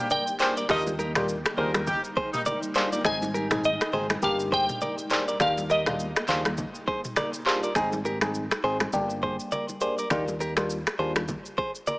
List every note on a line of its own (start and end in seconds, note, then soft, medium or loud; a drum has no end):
0.00 0.69 D3 medium
0.00 0.34 G3 loud
0.00 0.68 G3 medium
0.00 0.34 A#3 medium
0.00 3.01 A#3 medium
0.00 0.34 D4 medium
0.00 0.34 G4 loud
0.00 0.69 G4 medium
0.00 0.10 G5 loud
0.10 0.24 A#4 medium
0.10 0.24 D5 medium
0.10 0.72 G5 loud
0.10 low conga medium
0.10 shaker medium
0.27 shaker medium
0.39 0.63 G3 medium
0.39 0.63 A#3 medium
0.39 0.63 D4 medium
0.39 0.54 F4 medium
0.39 0.64 G4 medium
0.39 0.54 G#4 medium
0.39 0.53 G#4 medium
0.39 0.53 C5 medium
0.39 0.54 C5 medium
0.39 clap medium
0.39 shaker medium
0.57 0.67 A#4 medium
0.57 0.67 D5 medium
0.57 shaker medium
0.69 1.42 D#2 loud
0.69 3.03 D#3 medium
0.69 0.93 G3 medium
0.69 3.02 G3 medium
0.69 0.83 G3 loud
0.69 0.93 A#3 medium
0.69 0.83 A#3 loud
0.69 0.93 D4 medium
0.69 4.19 D#4 medium
0.69 0.83 D#4 loud
0.69 0.83 D#4 medium
0.69 0.93 F4 loud
0.69 0.82 G4 medium
0.69 2.43 D#5 medium
0.69 finger snap medium
0.69 kick loud
0.69 cross-stick medium
0.69 low conga medium
0.69 shaker medium
0.87 high conga medium
0.87 shaker medium
0.99 1.12 G4 medium
0.99 1.12 A#4 medium
0.99 high conga medium
0.99 shaker medium
1.15 1.37 G3 medium
1.15 1.26 G3 medium
1.15 1.37 A#3 medium
1.15 1.37 D4 medium
1.15 1.26 D#4 medium
1.15 1.37 F4 medium
1.15 1.26 G4 medium
1.15 finger snap medium
1.15 cross-stick loud
1.15 mid tom loud
1.15 high conga medium
1.15 shaker medium
1.29 shaker medium
1.46 finger snap medium
1.46 cross-stick loud
1.46 shaker medium
1.57 1.92 D#2 loud
1.57 1.81 G3 medium
1.57 1.81 A#3 medium
1.57 1.81 D4 medium
1.57 1.71 D#4 medium
1.57 1.81 F4 medium
1.57 1.71 G4 medium
1.57 1.71 G#4 medium
1.57 1.71 A#4 medium
1.57 1.71 C5 medium
1.57 low conga medium
1.74 1.85 D#4 medium
1.74 1.85 G4 medium
1.74 1.85 A#4 medium
1.74 finger snap medium
1.74 cross-stick medium
1.74 high conga medium
1.74 shaker soft
1.87 2.01 G3 medium
1.87 2.01 D#4 medium
1.87 2.01 G4 loud
1.87 kick medium
1.87 low conga medium
1.87 shaker medium
2.04 shaker medium
2.17 2.30 G#4 medium
2.17 2.29 C5 medium
2.17 kick loud
2.34 2.41 G3 medium
2.34 2.41 A#3 medium
2.34 2.41 D#4 medium
2.34 mid tom loud
2.34 shaker medium
2.46 2.59 A#4 medium
2.46 2.59 D5 medium
2.46 low conga medium
2.46 shaker medium
2.63 shaker medium
2.75 2.99 G3 medium
2.75 2.99 A#3 medium
2.75 2.99 D4 medium
2.75 2.99 F4 medium
2.75 2.89 G#4 medium
2.75 2.88 C5 medium
2.75 clap medium
2.75 shaker medium
2.93 3.02 A#4 medium
2.93 3.02 D5 medium
2.93 shaker medium
3.05 3.77 G#1 loud
3.05 4.21 C3 medium
3.05 4.21 D#3 medium
3.05 3.28 G#3 loud
3.05 4.21 G#3 medium
3.05 3.28 C4 medium
3.05 3.28 D#4 medium
3.05 3.18 D#4 medium
3.05 3.18 G#4 medium
3.05 3.28 G#4 loud
3.05 3.66 G#5 loud
3.05 finger snap medium
3.05 kick loud
3.05 cross-stick medium
3.05 low conga medium
3.05 shaker medium
3.22 high conga medium
3.22 shaker medium
3.34 3.48 G4 medium
3.34 3.47 A#4 medium
3.34 high conga medium
3.34 shaker medium
3.51 3.72 G#3 medium
3.51 3.72 C4 medium
3.51 3.72 D#4 medium
3.51 3.72 G#4 medium
3.51 finger snap medium
3.51 cross-stick loud
3.51 mid tom loud
3.51 high conga medium
3.51 shaker medium
3.64 4.19 D#5 loud
3.64 shaker medium
3.81 finger snap medium
3.81 cross-stick loud
3.81 shaker medium
3.92 4.15 G#1 loud
3.92 4.16 G#3 medium
3.92 4.16 C4 medium
3.92 4.16 D#4 medium
3.92 4.17 G#4 medium
3.92 4.06 G#4 medium
3.92 4.06 C5 medium
3.92 low conga medium
4.10 finger snap medium
4.10 cross-stick medium
4.10 high conga medium
4.10 shaker soft
4.22 4.67 G1 loud
4.22 7.72 A#2 medium
4.22 5.05 G3 medium
4.22 5.39 G3 medium
4.22 5.05 A#3 medium
4.22 7.72 A#3 medium
4.22 5.05 D4 medium
4.22 5.39 G4 medium
4.22 5.05 G4 loud
4.22 4.37 F5 loud
4.22 kick medium
4.22 low conga medium
4.22 shaker medium
4.40 shaker medium
4.52 4.65 G#4 medium
4.52 4.65 C5 medium
4.52 5.44 G5 loud
4.52 kick loud
4.69 mid tom loud
4.69 shaker medium
4.81 4.95 A#4 medium
4.81 4.94 D5 medium
4.81 low conga medium
4.81 shaker medium
4.98 shaker medium
5.10 5.34 G3 medium
5.10 5.34 A#3 medium
5.10 5.34 D4 medium
5.10 5.34 G4 medium
5.10 5.24 G#4 medium
5.10 5.24 C5 medium
5.10 clap medium
5.10 shaker medium
5.28 5.38 A#4 medium
5.28 5.37 D5 medium
5.28 shaker medium
5.40 6.12 D#2 loud
5.40 5.63 G3 medium
5.40 7.73 G3 medium
5.40 5.63 A#3 medium
5.40 5.64 D4 medium
5.40 7.73 D#4 medium
5.40 5.54 D#4 medium
5.40 5.64 F4 loud
5.40 5.53 G4 medium
5.40 5.71 F5 loud
5.40 finger snap medium
5.40 kick loud
5.40 cross-stick medium
5.40 low conga medium
5.40 shaker medium
5.58 high conga medium
5.58 shaker medium
5.70 5.83 G4 medium
5.70 5.82 A#4 medium
5.70 7.43 D#5 medium
5.70 high conga medium
5.70 shaker soft
5.86 6.07 G3 medium
5.86 6.08 A#3 medium
5.86 6.08 D4 medium
5.86 6.08 F4 medium
5.86 finger snap medium
5.86 cross-stick loud
5.86 mid tom loud
5.86 high conga medium
5.86 shaker medium
6.00 shaker medium
6.16 finger snap medium
6.16 cross-stick loud
6.16 shaker medium
6.28 6.63 D#2 medium
6.28 6.52 G3 medium
6.28 6.52 A#3 medium
6.28 6.52 D4 medium
6.28 6.52 F4 medium
6.28 6.42 G#4 medium
6.28 6.41 C5 medium
6.28 clap medium
6.28 low conga medium
6.28 shaker medium
6.45 finger snap medium
6.45 cross-stick loud
6.45 high conga medium
6.45 shaker soft
6.58 kick medium
6.58 low conga medium
6.58 shaker medium
6.75 shaker soft
6.88 7.01 G#4 medium
6.88 7.00 C5 medium
6.88 kick loud
7.05 mid tom loud
7.05 shaker medium
7.16 7.30 A#4 medium
7.16 7.30 D5 medium
7.16 finger snap medium
7.16 cross-stick loud
7.16 low conga medium
7.16 shaker medium
7.34 shaker medium
7.46 7.69 G3 medium
7.46 7.69 A#3 medium
7.46 7.69 D4 medium
7.46 7.69 F4 medium
7.46 7.60 G#4 medium
7.46 7.59 C5 medium
7.46 clap medium
7.63 7.73 A#4 medium
7.63 7.72 D5 medium
7.63 shaker medium
7.75 8.48 G#1 loud
7.75 7.99 G#3 medium
7.75 7.99 C4 medium
7.75 7.99 D#4 medium
7.75 7.89 D#4 medium
7.75 7.99 G#4 loud
7.75 7.88 G#4 medium
7.75 finger snap medium
7.75 kick loud
7.75 cross-stick medium
7.75 low conga medium
7.75 shaker medium
7.93 high conga medium
7.93 shaker medium
8.05 8.18 G4 medium
8.05 8.18 A#4 medium
8.05 high conga medium
8.05 shaker soft
8.21 8.43 G#3 medium
8.21 8.43 C4 medium
8.21 8.43 D#4 medium
8.21 8.43 G#4 medium
8.21 finger snap medium
8.21 cross-stick loud
8.21 high conga medium
8.21 shaker medium
8.34 shaker medium
8.51 finger snap medium
8.51 cross-stick medium
8.51 shaker medium
8.63 8.86 G#1 medium
8.63 8.87 G#3 medium
8.63 8.87 C4 medium
8.63 8.87 D#4 medium
8.63 8.87 G#4 medium
8.63 8.77 G#4 medium
8.63 8.77 C5 medium
8.80 finger snap medium
8.80 cross-stick medium
8.80 high conga medium
8.80 shaker soft
8.93 9.37 G1 loud
8.93 9.75 G3 medium
8.93 9.75 A#3 medium
8.93 9.76 D4 medium
8.93 9.76 G4 loud
8.93 kick medium
8.93 low conga medium
8.93 shaker medium
9.10 shaker soft
9.23 9.36 G#4 medium
9.23 9.36 C5 medium
9.23 kick medium
9.40 shaker medium
9.52 9.65 A#4 medium
9.52 9.65 D5 medium
9.52 low conga medium
9.52 shaker medium
9.69 high conga medium
9.69 shaker medium
9.81 10.04 G3 medium
9.81 10.04 A#3 medium
9.81 10.05 D4 medium
9.81 10.05 G4 medium
9.81 9.95 G#4 medium
9.81 9.94 C5 medium
9.81 shaker medium
9.98 10.08 A#4 medium
9.98 10.08 D5 medium
9.98 shaker medium
10.10 10.83 D#2 loud
10.10 10.34 G3 medium
10.10 10.34 A#3 medium
10.10 10.34 D4 medium
10.10 10.24 D#4 medium
10.10 10.34 F4 loud
10.10 10.24 G4 medium
10.10 finger snap medium
10.10 kick loud
10.10 cross-stick medium
10.10 low conga medium
10.10 shaker medium
10.28 high conga medium
10.28 shaker medium
10.40 10.54 G4 medium
10.40 10.53 A#4 medium
10.40 high conga medium
10.40 shaker soft
10.57 10.78 G3 medium
10.57 10.78 A#3 medium
10.57 10.78 D4 medium
10.57 10.78 F4 medium
10.57 finger snap medium
10.57 cross-stick medium
10.57 high conga medium
10.57 shaker medium
10.70 shaker medium
10.87 finger snap medium
10.87 cross-stick medium
10.87 shaker medium
10.99 11.34 D#2 medium
10.99 11.22 G3 medium
10.99 11.22 A#3 medium
10.99 11.22 D4 medium
10.99 11.22 F4 medium
10.99 11.12 G#4 medium
10.99 11.12 C5 medium
11.16 finger snap medium
11.16 cross-stick medium
11.16 high conga medium
11.16 shaker soft
11.28 kick medium
11.28 low conga medium
11.28 shaker medium
11.46 shaker soft
11.58 11.71 G#4 medium
11.58 11.71 C5 medium
11.58 kick medium
11.75 shaker medium
11.87 11.99 A#4 medium
11.87 11.99 D5 medium
11.87 low conga medium
11.87 shaker medium